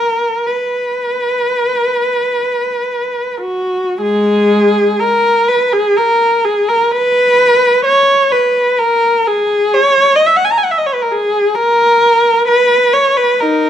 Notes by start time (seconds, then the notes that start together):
Already playing: A#4
0.47 B4
3.41 F#4
4.01 G#3 G#4
5.00 A#4
5.48 B4
5.73 G#4
5.97 A#4
6.45 G#4
6.69 A#4
6.92 B4
7.86 C#5
8.32 B4
8.79 A#4
9.27 G#4
9.74 C#5
10.16 D#5
10.27 E5
10.37 F#5
10.45 G#5
10.52 A#5
10.58 G#5
10.64 F#5
10.71 E5
10.78 D#5
10.87 C#5
10.94 B4
11.02 A#4
11.11 G#4
11.55 A#4
12.48 B4
12.93 C#5
13.17 B4
13.40 D#4 A#4